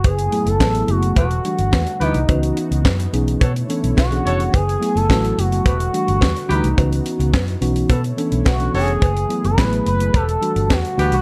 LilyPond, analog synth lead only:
\new Staff \with { instrumentName = "Analog synth lead" } { \time 4/4 \key fis \minor \tempo 4 = 107 gis'8. a'8. fis'8 fis'4. dis'8~ | dis'8 r2 r8 fis'4 | gis'8. a'8. fis'8 fis'4. dis'8~ | dis'8 r2 r8 fis'8 gis'8~ |
gis'8. b'8. b'8 a'4 fis'8. fis'16 | }